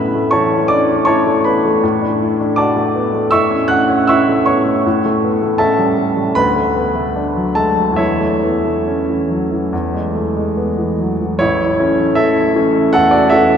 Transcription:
Already playing: A2 A3 B3 C#4 D4 E4 B4 E5 B5
0.15 A3
0.31 E3 C#5 A5 C#6
0.52 C#4
0.68 D4 D5 D6
0.90 C#4
1.05 E4 C#5 A5 C#6
1.26 A3
1.44 B3 B4 B5
1.65 A3
1.83 A2
2.02 D4
2.20 E4
2.40 D4
2.56 F#4 D5 A5 D6
2.77 A3
2.96 B3
3.14 A3
3.31 A2 E5 C#6 E6
3.50 C#4
3.68 D4 F#5 F#6
3.89 C#4
4.07 E4 E5 C#6 E6
4.29 A3
4.46 B3 C#5 C#6
4.65 A3
4.86 A2
5.06 A3
5.24 B3
5.42 A3
5.58 C#4 A4 E5 A5
5.78 G3
5.97 A3
6.17 G3
6.35 D2 B4 B5
6.56 A3
6.76 B3
6.95 A3
7.16 D4
7.36 F#3
7.55 G#3 A4 A5
7.78 F#3
7.92 E2
7.96 E4 C#5 E5
8.20 A3
8.43 B3
8.65 A3
8.88 C#4
9.10 E3
9.30 F#3
9.51 E3
9.73 E2
9.94 G#3
10.15 A3
10.36 G#3
10.57 B3
10.78 E3
10.99 F#3
11.21 E3
11.39 A1 E4 C#5
11.79 E3 A3 C#4
12.15 A4 E5
12.55 E3 A3 C#4
12.93 E2 A4 F#5
13.11 F#4 D5
13.30 E3 A3 C#4 A4 E5

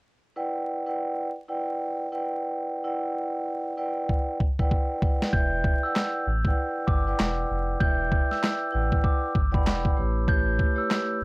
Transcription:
0.36 E4 B4 D5 F#5 G5
0.86 E4 B4 D5 F#5 G5
1.48 E4 B4 D5 F#5 G5
2.12 E4 B4 D5 F#5 G5
2.84 E4 B4 D5 F#5 G5
3.77 E4 B4 D5 F#5 G5
4.09 kick
4.40 kick
4.59 E4 B4 D5 F#5 G5, kick
4.71 kick
5.02 E4 B4 D5 F#5 G5, kick
5.22 snare
5.33 E1 E4 B4 D5 E5 G5 G6, kick
5.64 kick
5.83 E4 B4 D5 F#5 G5 E6
5.96 snare, clap
6.27 A1
6.45 E4 B4 D5 F#5 G5, kick
6.87 G1 D6, kick
7.07 E4 B4 D5 F#5 G5
7.19 E1, snare, clap
7.50 F1
7.80 E1 E4 B4 D5 E5 G5 G6, kick
8.12 kick
8.31 E6, snare
8.44 snare, clap
8.72 A1 E4 B4 D5 F#5 G5
8.92 kick
9.04 D6, kick
9.35 G1, kick
9.52 E4 B4 D5 F#5 G5 B5, kick
9.67 E1, snare, clap
9.85 kick
9.97 A1 A3 E4 G4 B4 C#5
10.27 A3 E4 G4 B4 C#5 G6, kick
10.59 kick
10.75 A3 E4 G4 B4 C#5 E6
10.91 snare, clap

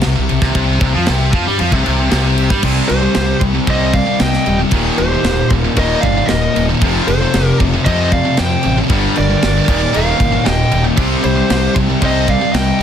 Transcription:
0.01 C3, snare, crash
0.06 C2
0.16 C2 C3
0.29 C2 C3, crash
0.42 C2 C3, kick, snare
0.54 C2 C3, kick, crash
0.81 C2 C3, kick, crash
0.94 F2 F3
1.06 C2 C3, snare, crash
1.33 F2 F3, kick, crash
1.47 G2 G3
1.59 F2 F3, crash
1.72 C2 C3, kick
1.86 C2 C3, crash
2.11 C2 C3, snare, crash
2.38 crash
2.50 G2 G3, kick, snare
2.63 C2 C3 G3 C4, kick, crash
2.88 C2 C3 G3 G4 C5, crash
3.02 C3 G3
3.14 C2 C3 G3, snare, crash
3.41 C2 C3 G3, kick, crash
3.55 C3 G3
3.67 C2 C3 G3 C4 C5 D#5, kick, crash
3.93 C3 G3 D5 F5, kick, crash
4.06 C3 G3
4.20 C2 C3 G3 D#5 G5, snare, crash
4.33 snare
4.46 D#1 C3 G3, crash
4.59 C3 G3
4.71 D#1 D#2 A#2 D#3, kick, crash
4.98 D#1 D#2 A#2 G4 C5, crash
5.14 D#2 A#2
5.24 D#1 D#2 A#2, snare, crash
5.50 D#1 D#2 A#2, kick, crash
5.64 D#2 A#2
5.76 D#1 D#2 A#2 D#3 A#4 D#5, kick, crash
6.00 G1 D5 F5, kick, crash
6.05 D#2 A#2
6.18 D#2 A#2
6.26 A#4 D#5, snare, crash
6.30 D#1 D#2 A#2
6.56 D#1 D#2 A#2, crash
6.69 D#2 A#2
6.81 F1 F2 C3 F3, kick, crash
7.08 F1 F2 C3 A4 C5, crash
7.22 F2 C3
7.34 F1 F2 C3, snare, crash
7.60 F1 F2 C3, kick, crash
7.74 F2 C3
7.85 F2 C3 F3 C5 D#5, kick, crash
8.11 F2 C3 D5 F5, kick, crash
8.25 F2 C3
8.37 F2 C3 G5, snare, crash
8.41 C5
8.63 A1 F2 C3, crash
8.77 F2 C3
8.89 G1 G2 D3 G3, kick, crash
9.16 G1 G2 D3 A#4 D5, crash
9.29 G2 D3
9.42 G1 G2 D3, snare, crash
9.68 D#1 D#2 A#2 D#3, kick, crash
9.81 D#2 A#2
9.93 D#1 D#2 A#2 D#3 A#4 F5, crash
10.20 G1 D#2 A#2, kick, crash
10.32 D#2 A#2
10.44 D#1 D#2 A#2 D#5 G5, snare, crash
10.72 D#1 D#2 A#2, crash
10.84 D#2 A#2
10.96 C2 C3 G3 C4, kick, crash
11.22 C2 C3 G3 G4 C5, crash
11.36 C3 G3
11.50 C2 C3 G3, snare, crash
11.76 C2 C3 G3, kick, crash
11.90 C3 G3
12.02 C2 C3 G3 C4 C5 D#5, kick, crash
12.28 C3 G3 D5 F5, kick, crash
12.41 C3 G3
12.53 C2 C3 G3 D#5 G5, snare, crash

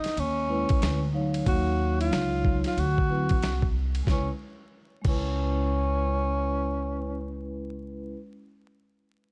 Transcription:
Already playing: D#4
0.04 muted upright bass stroke, snare, ride
0.16 D#2 C#4, ride
0.48 G#3 C#4 E4 B4
0.69 muted upright bass stroke, kick, ride
0.82 D2, snare, hi-hat pedal, ride
1.13 F#3 D#4 C#5 F5
1.34 ride
1.46 D#2 F#4, kick, ride
2.01 F4, ride
2.10 C#2 F#3 D#4 F4 C#5, snare, hi-hat pedal, ride
2.45 kick
2.64 F4, muted upright bass stroke, snare, ride
2.77 D2 F#4, ride
2.98 kick
3.08 F#3 C4 E4 B4
3.29 muted upright bass stroke, kick, ride
3.42 C2, snare, hi-hat pedal, ride
3.62 kick
3.95 ride
4.03 C#2 G#3 C#4
4.07 C#4 E4 B4, kick, snare
5.01 C#2 G#3 C#4, kick, crash
5.07 C#4 E4 B4

